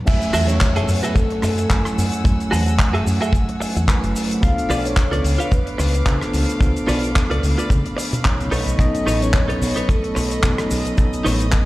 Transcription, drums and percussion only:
0.07 kick, closed hi-hat, crash, shaker
0.22 closed hi-hat, shaker
0.33 cross-stick, open hi-hat, shaker
0.48 closed hi-hat, shaker
0.60 kick, clap, closed hi-hat, shaker
0.76 closed hi-hat
0.88 open hi-hat, shaker
1.03 closed hi-hat, shaker
1.16 kick, closed hi-hat, shaker
1.30 closed hi-hat
1.42 cross-stick, open hi-hat, shaker
1.58 closed hi-hat, shaker
1.70 kick, clap, closed hi-hat, shaker
1.85 cross-stick, closed hi-hat, shaker
1.98 open hi-hat, shaker
2.12 closed hi-hat, shaker
2.25 kick, closed hi-hat, shaker
2.40 closed hi-hat, shaker
2.52 cross-stick, open hi-hat, shaker
2.66 closed hi-hat, shaker
2.79 kick, clap, closed hi-hat, shaker
2.95 closed hi-hat
3.07 open hi-hat, shaker
3.22 closed hi-hat, shaker
3.33 kick, closed hi-hat, shaker
3.49 closed hi-hat
3.62 open hi-hat, shaker
3.77 closed hi-hat, shaker
3.88 kick, cross-stick, clap, closed hi-hat, shaker
4.04 closed hi-hat, shaker
4.16 open hi-hat, shaker
4.31 closed hi-hat, shaker
4.43 kick, closed hi-hat, shaker
4.58 closed hi-hat, shaker
4.70 cross-stick, open hi-hat, shaker
4.85 closed hi-hat, shaker
4.97 kick, clap, closed hi-hat, shaker
5.13 closed hi-hat
5.24 open hi-hat, shaker
5.40 closed hi-hat, shaker
5.51 kick, closed hi-hat, shaker
5.67 closed hi-hat
5.79 cross-stick, open hi-hat, shaker
5.94 closed hi-hat, shaker
6.06 kick, clap, closed hi-hat, shaker
6.21 cross-stick, closed hi-hat, shaker
6.33 open hi-hat, shaker
6.49 closed hi-hat, shaker
6.61 kick, closed hi-hat, shaker
6.76 closed hi-hat, shaker
6.88 cross-stick, open hi-hat, shaker
7.03 closed hi-hat, shaker
7.16 kick, clap, closed hi-hat, shaker
7.31 closed hi-hat
7.43 open hi-hat, shaker
7.59 closed hi-hat, shaker
7.70 kick, closed hi-hat, shaker
7.86 closed hi-hat
7.98 open hi-hat, shaker
8.13 closed hi-hat, shaker
8.25 kick, cross-stick, clap, closed hi-hat, shaker
8.40 closed hi-hat, shaker
8.52 open hi-hat, shaker
8.68 closed hi-hat, shaker
8.79 kick, closed hi-hat, shaker
8.95 closed hi-hat, shaker
9.07 cross-stick, open hi-hat, shaker
9.22 closed hi-hat, shaker
9.34 kick, clap, closed hi-hat, shaker
9.50 closed hi-hat
9.62 open hi-hat, shaker
9.77 closed hi-hat, shaker
9.89 kick, closed hi-hat, shaker
10.04 closed hi-hat
10.16 cross-stick, open hi-hat, shaker
10.31 closed hi-hat, shaker
10.43 kick, clap, closed hi-hat, shaker
10.58 cross-stick, closed hi-hat, shaker
10.71 open hi-hat, shaker
10.85 closed hi-hat, shaker
10.98 kick, closed hi-hat, shaker
11.13 closed hi-hat, shaker
11.26 cross-stick, open hi-hat, shaker
11.40 closed hi-hat, shaker
11.52 kick, clap, closed hi-hat, shaker

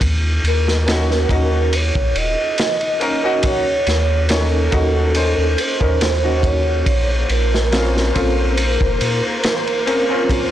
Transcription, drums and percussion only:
0.01 kick, ride
0.45 ride
0.68 snare
0.88 snare, ride
1.11 snare
1.29 kick, ride
1.73 ride
1.95 kick
2.16 ride
2.58 snare, ride
2.81 ride
3.01 ride
3.43 kick, ride
3.87 snare, ride
4.29 snare, ride
4.72 kick, ride
5.15 ride
5.58 ride
5.81 kick
6.01 snare, ride
6.43 kick, ride
6.86 kick, ride
7.29 ride
7.55 snare
7.72 snare, ride
7.97 snare
8.15 kick, ride
8.57 ride
8.81 kick
9.01 ride
9.44 snare, ride
9.67 ride
9.87 ride
10.29 kick, ride

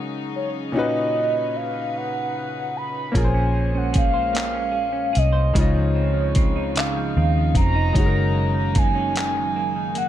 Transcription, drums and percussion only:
3.15 kick, closed hi-hat
3.94 kick, closed hi-hat
4.35 clap, closed hi-hat
5.15 closed hi-hat
5.55 kick, closed hi-hat
6.35 kick, closed hi-hat
6.76 clap, closed hi-hat
7.55 kick, closed hi-hat
7.95 kick, closed hi-hat
8.75 kick, closed hi-hat
9.16 clap, closed hi-hat
9.95 closed hi-hat

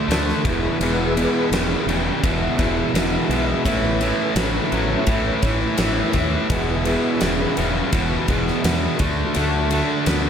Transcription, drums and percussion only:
0.11 snare, ride
0.29 snare
0.45 kick, ride
0.81 ride
1.17 ride
1.53 snare, ride
1.89 ride
2.24 kick, ride
2.59 kick, ride
2.95 snare, ride
3.31 ride
3.66 kick, ride
4.01 ride
4.36 snare, ride
4.72 ride
5.07 kick, ride
5.42 kick, ride
5.78 snare, ride
6.13 kick, ride
6.50 kick, ride
6.85 ride
7.21 snare, ride
7.57 ride
7.93 kick, ride
8.28 kick, ride
8.47 snare
8.64 snare, ride
8.99 kick, ride
9.34 ride
9.71 ride
10.06 snare, ride

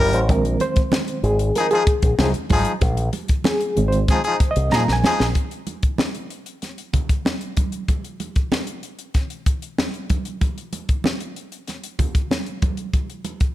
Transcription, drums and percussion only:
0.13 closed hi-hat
0.29 kick, closed hi-hat, muted conga
0.45 closed hi-hat
0.60 closed hi-hat, muted conga
0.76 kick, closed hi-hat
0.92 snare, high conga
1.08 closed hi-hat
1.24 closed hi-hat
1.39 closed hi-hat
1.55 snare, closed hi-hat, muted conga
1.71 closed hi-hat
1.87 kick, closed hi-hat
2.02 kick, closed hi-hat
2.19 snare, high conga
2.34 closed hi-hat, high conga
2.50 kick, open hi-hat, high conga
2.65 closed hi-hat
2.81 kick, closed hi-hat, muted conga
2.97 closed hi-hat
3.13 closed hi-hat, muted conga
3.28 kick, closed hi-hat
3.44 snare, high conga
3.61 closed hi-hat
3.77 closed hi-hat
3.92 closed hi-hat
4.08 kick, snare, closed hi-hat
4.24 closed hi-hat
4.40 kick, closed hi-hat
4.56 closed hi-hat
4.72 snare, high conga
4.87 snare, high conga
5.04 snare, high conga
5.20 snare
5.35 kick, closed hi-hat, muted conga
5.51 closed hi-hat
5.67 closed hi-hat, muted conga
5.83 kick, closed hi-hat
5.98 snare, high conga
6.15 closed hi-hat
6.30 closed hi-hat
6.46 closed hi-hat
6.62 snare, closed hi-hat, muted conga
6.78 closed hi-hat
6.93 kick, closed hi-hat, low conga
7.09 kick, closed hi-hat
7.25 snare, high conga
7.41 closed hi-hat
7.57 kick, closed hi-hat, high conga
7.72 closed hi-hat
7.88 kick, closed hi-hat, muted conga
8.04 closed hi-hat
8.20 closed hi-hat, muted conga
8.36 kick, closed hi-hat
8.52 snare, high conga
8.67 closed hi-hat
8.83 closed hi-hat
8.99 closed hi-hat
9.14 kick, snare, closed hi-hat
9.30 closed hi-hat
9.46 kick, closed hi-hat
9.62 closed hi-hat
9.78 snare, high conga
9.94 closed hi-hat
10.10 kick, closed hi-hat, high conga
10.25 closed hi-hat
10.41 kick, closed hi-hat, muted conga
10.58 closed hi-hat
10.73 closed hi-hat, muted conga
10.89 kick, closed hi-hat
11.04 snare, high conga
11.20 closed hi-hat
11.36 closed hi-hat
11.52 closed hi-hat
11.68 snare, closed hi-hat, muted conga
11.84 closed hi-hat
11.99 kick, closed hi-hat, low conga
12.15 kick, closed hi-hat
12.31 snare, high conga
12.46 closed hi-hat
12.62 kick, closed hi-hat, high conga
12.77 closed hi-hat
12.93 kick, closed hi-hat, muted conga
13.10 closed hi-hat
13.25 closed hi-hat, muted conga
13.40 kick, closed hi-hat

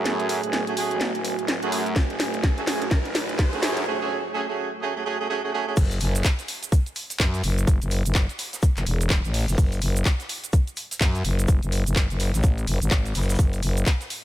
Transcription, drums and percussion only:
0.06 snare, closed hi-hat
0.20 closed hi-hat
0.29 open hi-hat
0.43 closed hi-hat
0.53 snare, closed hi-hat
0.67 closed hi-hat
0.77 open hi-hat
0.91 closed hi-hat
1.01 snare, closed hi-hat
1.15 closed hi-hat
1.25 open hi-hat
1.39 closed hi-hat
1.48 snare, closed hi-hat
1.63 closed hi-hat
1.72 open hi-hat
1.86 closed hi-hat
1.96 kick, snare, closed hi-hat
2.10 closed hi-hat
2.20 snare, open hi-hat
2.34 closed hi-hat
2.44 kick, snare, closed hi-hat
2.58 closed hi-hat
2.67 snare, open hi-hat
2.82 closed hi-hat
2.91 kick, snare, closed hi-hat
3.05 closed hi-hat
3.15 snare, open hi-hat
3.29 closed hi-hat
3.39 kick, snare, closed hi-hat
3.53 closed hi-hat
3.63 snare, open hi-hat
3.77 closed hi-hat
5.77 kick, closed hi-hat, crash, shaker
5.91 closed hi-hat, shaker
6.00 open hi-hat, shaker
6.15 closed hi-hat, shaker
6.24 kick, snare, clap, closed hi-hat, shaker
6.39 snare, closed hi-hat, shaker
6.48 open hi-hat, shaker
6.63 closed hi-hat, shaker
6.72 kick, closed hi-hat, shaker
6.86 closed hi-hat, shaker
6.96 open hi-hat, shaker
7.10 closed hi-hat, shaker
7.19 kick, snare, clap, closed hi-hat, shaker
7.34 closed hi-hat, shaker
7.43 open hi-hat, shaker
7.58 closed hi-hat, shaker
7.67 kick, closed hi-hat, shaker
7.82 closed hi-hat, shaker
7.91 open hi-hat, shaker
8.05 closed hi-hat, shaker
8.15 kick, snare, clap, closed hi-hat, shaker
8.29 closed hi-hat, shaker
8.38 snare, open hi-hat, shaker
8.53 snare, closed hi-hat, shaker
8.62 kick, closed hi-hat, shaker
8.77 clap, closed hi-hat, shaker
8.86 open hi-hat, shaker
9.01 closed hi-hat, shaker
9.10 kick, snare, clap, closed hi-hat, shaker
9.24 closed hi-hat, shaker
9.34 open hi-hat
9.48 closed hi-hat, shaker
9.58 kick, closed hi-hat, shaker
9.72 closed hi-hat, shaker
9.81 open hi-hat, shaker
9.96 closed hi-hat, shaker
10.05 kick, snare, clap, closed hi-hat, shaker
10.20 snare, closed hi-hat, shaker
10.29 open hi-hat, shaker
10.44 closed hi-hat, shaker
10.53 kick, closed hi-hat, shaker
10.67 closed hi-hat, shaker
10.77 open hi-hat, shaker
10.91 closed hi-hat, shaker
11.01 kick, snare, clap, closed hi-hat, shaker
11.15 closed hi-hat, shaker
11.25 open hi-hat, shaker
11.39 closed hi-hat, shaker
11.48 kick, closed hi-hat, shaker
11.63 closed hi-hat, shaker
11.72 open hi-hat, shaker
11.86 closed hi-hat, shaker
11.96 kick, snare, clap, closed hi-hat, shaker
12.10 closed hi-hat, shaker
12.20 snare, open hi-hat, shaker
12.34 snare, closed hi-hat, shaker
12.43 kick, closed hi-hat, shaker
12.58 closed hi-hat, shaker
12.67 open hi-hat, shaker
12.82 closed hi-hat, shaker
12.91 kick, clap, closed hi-hat, shaker
13.05 closed hi-hat, shaker
13.15 snare, open hi-hat, shaker
13.22 snare, shaker
13.29 snare, closed hi-hat, shaker
13.33 snare, shaker
13.39 kick, closed hi-hat, shaker
13.53 closed hi-hat, shaker
13.63 open hi-hat, shaker
13.77 closed hi-hat, shaker
13.86 kick, snare, clap, closed hi-hat, shaker
14.01 snare, closed hi-hat, shaker
14.10 open hi-hat, shaker

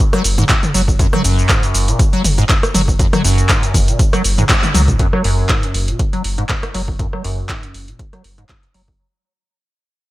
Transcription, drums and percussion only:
0.00 shaker
0.13 cross-stick, closed hi-hat
0.24 open hi-hat, shaker
0.38 closed hi-hat, mid tom, shaker
0.49 kick, clap, closed hi-hat, shaker
0.63 closed hi-hat, mid tom, shaker
0.74 open hi-hat, shaker
0.88 kick, shaker
0.99 kick, closed hi-hat, shaker
1.13 cross-stick, mid tom
1.24 open hi-hat, shaker
1.39 shaker
1.49 kick, clap, closed hi-hat, shaker
1.63 closed hi-hat, shaker
1.74 open hi-hat, shaker
1.88 closed hi-hat, shaker
1.99 kick, closed hi-hat, shaker
2.13 closed hi-hat
2.24 open hi-hat, mid tom, shaker
2.38 closed hi-hat, shaker
2.49 kick, clap, closed hi-hat, shaker
2.63 cross-stick, closed hi-hat, shaker
2.74 open hi-hat, mid tom, shaker
2.88 kick, shaker
2.99 kick, closed hi-hat, shaker
3.13 cross-stick, closed hi-hat, mid tom, shaker
3.24 open hi-hat, shaker
3.38 closed hi-hat, shaker
3.49 kick, clap, closed hi-hat, shaker
3.63 closed hi-hat, shaker
3.74 kick, open hi-hat, mid tom, shaker
3.88 closed hi-hat, shaker
3.99 kick, closed hi-hat, shaker
4.13 cross-stick, closed hi-hat, shaker
4.24 open hi-hat, shaker
4.38 closed hi-hat, mid tom, shaker
4.49 kick, clap, closed hi-hat, high tom, shaker
4.63 closed hi-hat, mid tom, high tom, shaker
4.74 open hi-hat, mid tom, shaker
4.88 kick, closed hi-hat, mid tom, shaker
4.99 kick, closed hi-hat
5.13 cross-stick
5.24 open hi-hat
5.49 kick, clap, closed hi-hat
5.63 closed hi-hat
5.74 open hi-hat
5.88 closed hi-hat
5.99 kick, closed hi-hat
6.13 closed hi-hat
6.24 open hi-hat
6.38 closed hi-hat
6.49 kick, clap, closed hi-hat
6.63 cross-stick, closed hi-hat
6.74 open hi-hat
6.88 kick
6.99 kick, closed hi-hat
7.13 cross-stick
7.24 open hi-hat
7.49 kick, clap, closed hi-hat
7.63 closed hi-hat
7.74 open hi-hat
7.88 closed hi-hat
7.99 kick, closed hi-hat
8.13 cross-stick, closed hi-hat
8.24 open hi-hat
8.38 closed hi-hat
8.49 kick, clap, closed hi-hat
8.63 closed hi-hat
8.74 open hi-hat
8.88 kick

